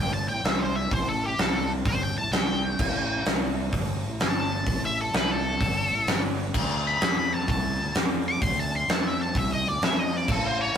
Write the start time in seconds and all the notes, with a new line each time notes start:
Already playing: G1
0.00 G5
0.13 A5
0.28 A1 G5
0.44 C2 E5, snare, open hi-hat
0.60 C5
0.76 E5
0.91 A1 C5, kick, open hi-hat
1.08 A4
1.25 G4
1.38 C2 A4, snare, open hi-hat
1.85 G1 C5, kick, open hi-hat
2.03 G5
2.17 A1 A5
2.31 C2 G5, snare, open hi-hat
2.79 A1, kick, crash
3.26 C2, snare, open hi-hat
3.72 G1, kick, open hi-hat
4.04 A1
4.20 G1 A5, snare, open hi-hat
4.66 A1, kick, open hi-hat
4.85 E5
5.01 A4
5.13 C2 B4, snare, open hi-hat
5.31 A4
5.60 G1, kick, open hi-hat
5.92 A1
6.07 G1, snare, open hi-hat
6.54 D2, kick, crash
6.87 B5
7.01 F2, snare, open hi-hat
7.18 B5
7.33 A5
7.48 C2 A5, kick, open hi-hat
7.80 D2
7.95 F2, snare, open hi-hat
8.28 D6
8.42 D2 C6, kick, open hi-hat
8.59 A5
8.76 C6
8.88 F2 A5, snare, open hi-hat
9.07 E5
9.21 A5
9.35 C2 E5, kick, open hi-hat
9.52 D#5
9.66 D2 D5
9.82 F2 E5, snare, open hi-hat
9.99 D#5
10.17 D5
10.28 A1 A4, kick, crash
10.47 C5
10.61 C#5